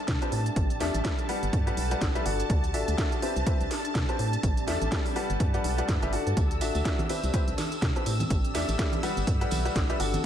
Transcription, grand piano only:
0.22 0.36 C4 medium
0.22 0.36 G4 medium
0.22 0.36 B4 medium
0.22 0.36 C5 medium
0.22 0.36 A5 medium
0.80 1.02 A3 medium
0.80 1.02 G4 medium
0.80 1.02 A4 medium
0.80 1.02 D5 medium
0.80 1.02 E5 loud
1.05 1.26 G3 medium
1.05 1.26 G4 medium
1.05 1.26 A4 medium
1.05 1.26 D5 medium
1.05 1.26 E5 medium
1.29 1.64 G3 medium
1.29 1.64 G4 medium
1.29 1.64 B4 medium
1.29 1.64 D5 medium
1.29 1.64 F#5 loud
1.67 1.88 G3 medium
1.67 1.88 G4 medium
1.67 1.88 B4 medium
1.67 1.88 D5 medium
1.67 1.88 F#5 medium
1.91 2.12 G3 medium
1.91 2.12 G4 medium
1.91 2.12 B4 medium
1.91 2.12 D5 medium
1.91 2.12 F#5 loud
2.15 2.23 G3 loud
2.15 2.23 G4 medium
2.15 2.23 B4 medium
2.15 2.23 D5 medium
2.15 2.23 E5 loud
2.26 2.72 D3 medium
2.26 2.72 F#4 medium
2.26 2.72 A4 medium
2.26 2.72 D5 medium
2.26 2.72 F#5 loud
2.74 2.96 D3 medium
2.74 2.96 F#4 medium
2.74 2.96 A4 medium
2.74 2.96 D5 medium
2.74 2.96 E5 loud
2.98 3.15 F#4 medium
2.98 3.15 A4 medium
2.98 3.15 D5 medium
2.98 3.15 E5 loud
3.22 3.44 C4 medium
3.22 3.44 G4 medium
3.22 3.44 B4 medium
3.22 3.44 C5 medium
3.22 3.44 E5 medium
3.46 3.64 C4 medium
3.46 3.64 G4 medium
3.46 3.64 B4 medium
3.46 3.64 C5 medium
3.46 3.64 E5 loud
4.09 4.23 C4 medium
4.09 4.23 G4 medium
4.09 4.23 B4 medium
4.09 4.23 C5 medium
4.09 4.23 A5 medium
4.67 4.89 A3 medium
4.67 4.89 G4 medium
4.67 4.89 A4 medium
4.67 4.89 D5 medium
4.67 4.89 E5 loud
4.92 5.13 G3 medium
4.92 5.13 G4 medium
4.92 5.13 A4 medium
4.92 5.13 D5 medium
4.92 5.13 E5 medium
5.16 5.51 G3 medium
5.16 5.51 G4 medium
5.16 5.51 B4 medium
5.16 5.51 D5 medium
5.16 5.51 F#5 loud
5.54 5.75 G3 medium
5.54 5.75 G4 medium
5.54 5.75 B4 medium
5.54 5.75 D5 medium
5.54 5.75 F#5 loud
5.78 5.99 G3 medium
5.78 5.99 G4 medium
5.78 5.99 B4 medium
5.78 5.99 D5 medium
5.78 5.99 F#5 loud
6.02 6.10 G3 loud
6.02 6.10 G4 medium
6.02 6.10 B4 medium
6.02 6.10 D5 medium
6.02 6.10 E5 loud
6.13 6.59 D3 loud
6.13 6.59 F#4 medium
6.13 6.59 A4 medium
6.13 6.59 D5 medium
6.13 6.59 F#5 loud
6.61 6.83 D3 medium
6.61 6.83 F#4 medium
6.61 6.83 A4 medium
6.61 6.83 D5 medium
6.61 6.83 E5 loud
6.85 7.02 F#4 medium
6.85 7.02 A4 medium
6.85 7.02 D5 medium
6.85 7.02 E5 loud
7.09 7.31 C4 medium
7.09 7.31 G4 medium
7.09 7.31 B4 medium
7.09 7.31 C5 medium
7.09 7.31 E5 medium
7.34 7.51 C4 medium
7.34 7.51 G4 medium
7.34 7.51 B4 medium
7.34 7.51 C5 medium
7.34 7.51 E5 loud
7.96 8.11 C4 medium
7.96 8.11 G4 medium
7.96 8.11 B4 medium
7.96 8.11 C5 medium
7.96 8.11 A5 medium
8.55 8.76 A3 medium
8.55 8.76 G4 medium
8.55 8.76 A4 medium
8.55 8.76 D5 medium
8.55 8.76 E5 loud
8.79 9.01 G3 medium
8.79 9.01 G4 medium
8.79 9.01 A4 medium
8.79 9.01 D5 medium
8.79 9.01 E5 medium
9.03 9.38 G3 loud
9.03 9.38 G4 medium
9.03 9.38 B4 medium
9.03 9.38 D5 medium
9.03 9.38 F#5 loud
9.41 9.63 G3 medium
9.41 9.63 G4 medium
9.41 9.63 B4 medium
9.41 9.63 D5 medium
9.41 9.63 F#5 loud
9.65 9.86 G3 medium
9.65 9.86 G4 medium
9.65 9.86 B4 medium
9.65 9.86 D5 medium
9.65 9.86 F#5 medium
9.89 9.97 G3 loud
9.89 9.97 G4 medium
9.89 9.97 B4 medium
9.89 9.97 D5 medium
9.89 9.97 E5 loud
10.00 10.26 D3 loud
10.00 10.26 F#4 medium
10.00 10.26 A4 medium
10.00 10.26 D5 medium
10.00 10.26 F#5 loud

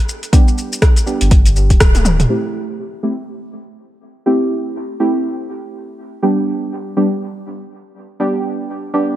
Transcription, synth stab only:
0.33 1.04 G3 medium
0.33 1.04 B3 medium
0.33 1.04 D4 medium
0.33 1.04 G4 loud
1.06 2.27 G3 medium
1.06 2.27 B3 medium
1.06 2.27 D4 medium
1.06 2.27 G4 medium
2.29 3.01 A3 medium
2.29 3.01 C4 medium
2.29 3.01 E4 medium
2.29 3.01 G4 loud
3.03 3.13 A3 medium
3.03 3.13 C4 medium
3.03 3.13 E4 medium
3.03 3.13 G4 medium
4.26 4.97 A3 medium
4.26 4.98 C4 medium
4.26 4.98 E4 medium
4.26 4.97 G4 medium
5.00 6.21 A3 medium
5.00 6.20 C4 medium
5.00 6.20 E4 medium
5.00 6.21 G4 medium
6.22 6.94 G3 medium
6.22 6.94 B3 medium
6.22 6.94 D4 medium
6.22 6.94 G4 medium
6.97 7.07 G3 medium
6.97 7.07 B3 medium
6.97 7.07 D4 medium
6.97 7.07 G4 medium
8.20 8.91 G3 medium
8.20 8.91 B3 medium
8.20 8.91 D4 medium
8.20 8.91 G4 medium
8.93 9.16 G3 medium
8.93 9.16 B3 medium
8.93 9.16 D4 medium
8.93 9.16 G4 medium

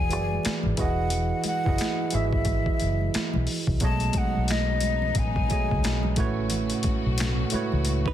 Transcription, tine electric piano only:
0.00 0.10 E3 medium
0.00 0.10 E4 medium
0.00 0.11 F#4 medium
0.00 0.12 G#4 medium
0.00 0.13 D5 loud
0.10 0.76 E3 medium
0.10 0.77 E4 medium
0.10 0.78 F#4 medium
0.10 0.79 G#4 medium
0.10 0.79 D5 medium
0.77 1.45 E3 medium
0.77 1.45 E4 medium
0.77 1.46 F#4 medium
0.77 1.46 G#4 medium
0.77 1.47 D#5 medium
1.65 2.03 E3 medium
1.65 2.03 E4 medium
1.65 2.03 F#4 medium
1.65 2.04 G#4 medium
1.65 2.04 D#5 medium
2.12 3.15 E3 medium
2.12 3.15 E4 medium
2.12 3.16 F#4 medium
2.12 3.16 G#4 medium
2.12 3.17 E5 medium
3.81 4.84 B2 medium
3.81 4.84 F#3 medium
3.81 4.85 G#3 medium
3.81 4.84 A3 medium
3.81 4.85 C#5 medium
3.81 4.85 D#5 loud
5.49 6.17 B2 medium
5.49 6.17 F#3 medium
5.49 6.16 A3 medium
5.49 6.18 G#4 medium
5.49 6.18 C#5 medium
5.49 6.18 D#5 medium
6.16 7.26 A2 medium
6.16 7.27 A3 medium
6.16 7.27 F#4 medium
6.16 7.28 B4 medium
6.16 7.28 C#5 loud
7.51 8.14 A2 medium
7.51 8.14 A3 medium
7.51 8.14 F#4 medium
7.51 8.14 B4 medium
7.51 8.14 C#5 medium

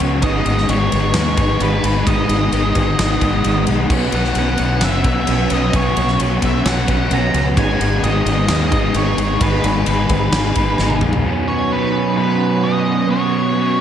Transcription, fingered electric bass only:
0.00 0.22 C#2 medium
0.22 0.44 G#1 medium
0.46 0.67 G#1 medium
0.69 0.90 G#1 medium
0.93 1.14 G#1 medium
1.15 1.36 D#2 medium
1.38 1.59 G#1 medium
1.60 1.82 G#1 medium
1.83 2.05 G#1 medium
2.07 2.28 G#1 medium
2.29 2.51 G#1 medium
2.52 2.74 G#1 medium
2.75 2.97 G#1 medium
2.99 3.20 G#1 medium
3.21 3.42 G#1 medium
3.45 3.66 G#1 medium
3.67 3.89 B1 medium
3.90 4.11 B1 medium
4.12 4.34 B1 medium
4.36 4.57 B1 medium
4.59 4.80 B1 medium
4.82 5.03 F#1 medium
5.04 5.26 B1 medium
5.28 5.49 B1 medium
5.51 5.72 B1 medium
5.74 5.95 B1 medium
5.97 6.18 B1 medium
6.20 6.41 B1 medium
6.43 6.64 B1 medium
6.65 6.87 B1 medium
6.88 7.10 B1 medium
7.11 7.32 B1 medium
7.34 7.55 C#2 medium
7.57 7.78 G#1 medium
7.80 8.01 G#1 medium
8.03 8.24 G#1 loud
8.25 8.47 G#1 medium
8.48 8.70 D#2 medium
8.72 8.93 G#1 medium
8.94 9.16 G#1 loud
9.18 9.39 G#1 medium
9.41 9.62 G#1 medium
9.64 9.85 G#1 medium
9.87 10.08 G#1 medium
10.09 10.31 G#1 medium
10.32 10.54 G#1 loud
10.56 10.77 G#1 medium
10.79 11.00 G#1 medium
11.02 11.23 A#1 medium

